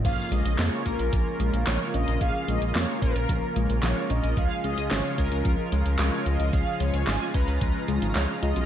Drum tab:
CC |x---------------|----------------|----------------|----------------|
HH |x-xxx-xxx-xxx-xx|x-xxx-xxx-xxx-xx|x-xxx-xxx-xxx-xx|x-xxx-xxx-xxx-xx|
CP |----x-------x---|----x-------x---|----x-------x---|----x-------x---|
SD |----o-------o---|----o-------o---|----o-------o---|----o-------o---|
BD |o-----o-o-------|o-----o-o-------|o-----o-o-------|o-----o-o-------|